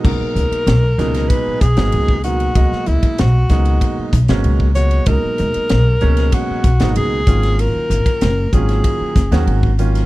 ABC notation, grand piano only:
X:1
M:4/4
L:1/16
Q:1/4=96
K:G#m
V:1 name="Grand piano" clef=bass
[B,,F,G,A,D]4- [B,,F,G,A,D] z [A,,B,,F,G,D]4 z [B,,F,G,A,D]2 z [B,,F,G,A,D]2 | [B,,F,G,A,d]4- [B,,F,G,A,d] z [B,,F,G,A,D]4 z [B,,F,G,A,C]2 z [B,,F,G,A,F]2 | [B,,F,G,A,D]4- [B,,F,G,A,D] z [B,,F,G,A,C]4 z [B,,F,G,A,D]2 z [D,F,A,C^E]2- | [D,F,A,C^E]4 z2 [D,F,A,CE]4 z [D,F,A,CF]2 z [D,F,A,CE]2 |]